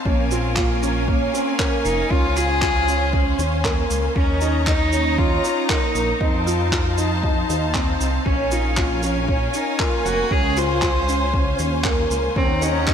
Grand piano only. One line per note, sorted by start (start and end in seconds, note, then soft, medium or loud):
0.06 0.28 C#4 loud
0.31 0.54 F4 medium
0.57 0.79 F4 medium
0.82 1.05 C#4 medium
1.08 1.30 C#4 medium
1.34 1.56 C#4 medium
1.59 2.04 A#3 medium
2.11 2.33 C#4 medium
2.37 2.59 F4 medium
2.62 2.84 F4 medium
2.87 3.10 C#4 medium
3.13 3.35 C#4 medium
3.39 3.61 C#4 medium
3.65 4.09 A#3 medium
4.16 4.38 C#4 medium
4.42 4.64 D#4 medium
4.67 4.89 D#4 medium
4.93 5.15 C#4 medium
5.18 5.41 C#4 medium
5.44 5.66 C#4 medium
5.69 6.14 A#3 medium
6.21 6.43 D#4 medium
6.46 6.69 F4 medium
6.72 6.95 F4 medium
6.98 7.20 D#4 medium
7.24 7.46 D#4 medium
7.49 7.72 D#4 medium
7.75 8.20 C4 medium
8.26 8.48 C#4 loud
8.52 8.74 F4 medium
8.77 9.00 F4 medium
9.03 9.25 C#4 medium
9.28 9.51 C#4 medium
9.54 9.76 C#4 medium
9.79 10.24 A#3 medium
10.31 10.53 C#4 medium
10.57 10.79 F4 medium
10.82 11.05 F4 medium
11.08 11.31 C#4 medium
11.34 11.56 C#4 medium
11.60 11.82 C#4 medium
11.85 12.30 A#3 medium
12.36 12.59 C#4 medium
12.62 12.84 D#4 medium
12.88 12.94 D#4 medium